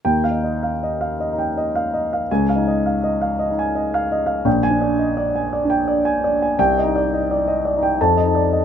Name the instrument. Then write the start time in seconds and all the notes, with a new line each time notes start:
grand piano
0.05 D#2 G5
0.24 F5
0.31 D#4
0.44 D#5
0.63 F5
0.83 D#5
1.01 F5
1.20 D#5
1.33 D#4
1.39 G5
1.57 D#5
1.75 F5
1.94 D#5
2.13 F5
2.31 C#2 G#5
2.49 F5
2.56 D#4
2.68 D#5
2.86 F5
3.04 D#5
3.21 F5
3.39 D#5
3.50 D#4
3.59 G#5
3.75 D#5
3.94 F5
4.12 D#5
4.26 F5
4.45 A#1 G5
4.63 G#5
4.70 D4
4.81 D5
4.99 D#5
5.17 D5
5.35 G#5
5.53 D5
5.65 D4
5.70 G5
5.88 D5
6.05 G#5
6.24 D5
6.42 G#5
6.59 C2 G5
6.78 D#5
6.84 D#4
6.96 D5
7.14 D#5
7.31 D5
7.48 D#5
7.65 D5
7.77 D#4
7.83 G5
8.01 F2 A5
8.17 D#5
8.23 D#4
8.35 D5
8.53 D#5